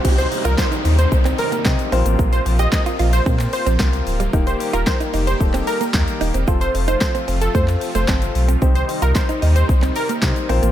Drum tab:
CC |x---------------|----------------|----------------|----------------|
HH |-xox-xox-xox-xox|-xox-xox-xox-xox|-xox-xox-xox-xox|-xox-xox-xox-xox|
SH |xxxxxxxxxxxxxxxx|xxxxxxxxxxxxxxxx|xxxxxxxxxxxxxxxx|xxxxxxxxxxxxxxxx|
CP |----x----x--x---|----x----x--x---|----x----x--x---|----x----x--x---|
SD |----o-------o---|----o-------o---|----o-------o---|----o-------o---|
BD |o---o---o---o---|o---o---o---o---|o---o---o---o---|o---o---o---o---|

CC |----------------|
HH |-xox-xox-xox-xox|
SH |xxxxxxxxxxxxxxxx|
CP |----x----x--x---|
SD |----o-------o---|
BD |o---o---o---o---|